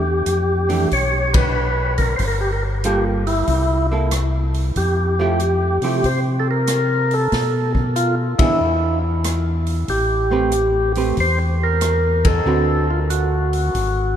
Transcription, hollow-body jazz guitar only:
0.69 0.89 E3 medium
0.69 0.89 A3 medium
0.69 0.89 D4 medium
0.69 0.89 G4 medium
2.84 3.22 G3 medium
2.84 3.23 A#3 medium
2.84 3.23 F4 medium
2.84 3.23 A4 medium
3.92 4.10 A#3 medium
3.92 4.10 E4 medium
3.92 4.11 A4 medium
5.19 5.38 F3 medium
5.19 5.38 A3 medium
5.19 5.39 E4 medium
5.19 5.39 G4 medium
5.83 6.02 F3 medium
5.83 6.03 A3 medium
5.83 6.03 E4 medium
5.83 6.03 G4 medium
8.39 8.59 E3 medium
8.39 8.59 B3 medium
8.39 8.59 D4 medium
8.39 8.59 G#4 medium
10.31 10.51 A3 medium
10.31 10.51 C4 medium
10.31 10.51 G4 medium
10.31 10.51 B4 medium
10.97 11.16 A3 medium
10.97 11.16 C4 medium
10.97 11.16 G4 medium
10.97 11.16 B4 medium
12.46 12.84 D3 medium
12.46 12.85 C4 medium
12.46 12.85 F#4 medium
12.46 12.85 B4 medium

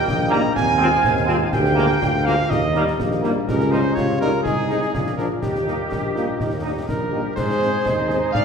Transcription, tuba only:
0.08 0.48 A#1 loud
0.57 0.97 D#2 loud
1.05 1.45 D#2 loud
1.54 1.94 D2 loud
2.02 2.42 D2 loud
2.50 2.91 D#2 loud
2.99 3.39 A#1 medium
3.48 3.88 C#2 loud
3.96 4.37 C#2 medium
4.45 4.86 C2 medium
4.94 5.30 A#1 medium
5.42 5.83 D#2 medium
5.91 6.31 A#1 medium
6.39 6.80 D#2 medium
6.89 7.29 A#1 medium
7.36 7.77 G#2 medium
7.85 8.26 D#2 medium
8.34 8.45 G#2 medium

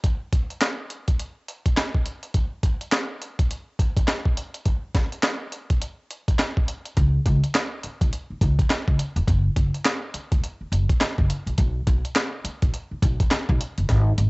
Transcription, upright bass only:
6.97 7.18 C#2 medium
7.26 7.38 C#2 loud
7.84 muted upright bass stroke soft
8.01 8.09 B1 medium
8.30 muted upright bass stroke soft
8.41 8.54 C#2 medium
8.70 muted upright bass stroke soft
8.88 8.96 C#2 medium
9.16 9.24 E1 medium
9.28 9.48 F#1 medium
9.57 9.69 F#1 medium
10.14 muted upright bass stroke soft
10.32 10.40 E1 medium
10.61 muted upright bass stroke soft
10.72 10.84 F#1 medium
11.00 muted upright bass stroke soft
11.18 11.26 F#1 medium
11.46 11.55 A#1 medium
11.58 11.79 B1 medium
11.87 12.00 B1 medium
12.44 muted upright bass stroke soft
12.62 12.70 A#1 medium
12.91 muted upright bass stroke soft
13.02 13.15 B1 loud
13.31 muted upright bass stroke soft
13.49 13.57 B1 medium
13.78 13.86 F#1 medium
13.89 14.10 G#1 loud
14.18 14.30 G#1 loud

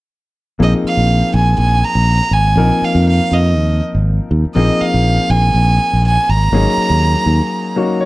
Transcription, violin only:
0.63 0.73 D#5 medium
0.87 1.32 F5 medium
1.36 1.58 G#5 medium
1.59 1.86 G#5 medium
1.84 2.35 A#5 medium
2.33 2.86 G#5 medium
2.84 3.08 F5 medium
3.09 3.35 F5 medium
3.33 3.82 D#5 medium
4.55 4.83 D#5 medium
4.82 5.32 F5 medium
5.30 6.04 G#5 medium
6.07 6.31 G#5 medium
6.30 8.02 A#5 medium

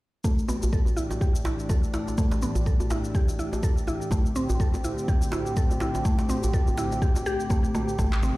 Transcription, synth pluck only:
0.24 0.37 A3 medium
0.48 0.56 B3 medium
0.73 0.80 A4 medium
0.97 1.09 E4 medium
1.21 1.34 G4 medium
1.45 1.58 E4 medium
1.70 1.77 A4 medium
1.94 2.06 E4 medium
2.18 2.30 A3 medium
2.42 2.50 B3 medium
2.67 2.74 A4 medium
2.91 3.03 E4 medium
3.15 3.27 G4 medium
3.39 3.52 E4 medium
3.63 3.71 A4 medium
3.88 4.00 E4 medium
4.12 4.24 A3 medium
4.36 4.43 C4 medium
4.60 4.67 A4 medium
4.84 4.97 E4 medium
5.08 5.21 G4 medium
5.33 5.45 E4 medium
5.57 5.64 A4 medium
5.81 5.94 E4 medium
6.05 6.18 A3 medium
6.30 6.37 C4 medium
6.54 6.61 A4 medium
6.78 6.90 E4 medium
7.02 7.14 G4 medium
7.26 7.39 G4 loud
7.51 7.64 A3 medium
7.75 7.87 A3 medium
7.99 8.11 A3 medium
8.23 8.30 C4 medium

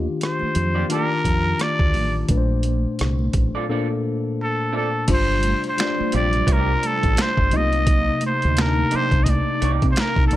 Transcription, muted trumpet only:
0.23 0.87 C5 medium
0.93 1.63 A#4 medium
1.62 2.16 D5 loud
4.42 4.73 A4 medium
4.77 5.08 A4 medium
5.13 5.62 C5 medium
5.69 6.12 C5 medium
6.16 6.54 D5 medium
6.52 6.88 A#4 medium
6.86 7.23 A4 loud
7.22 7.58 C5 medium
7.57 8.24 D#5 loud
8.26 8.63 C5 medium
8.61 8.97 A#4 loud
8.96 9.25 C5 loud
9.24 9.31 D#5 medium
9.30 9.72 D5 medium
9.91 10.01 C5 medium
10.00 10.26 A#4 medium
10.27 10.36 A4 medium

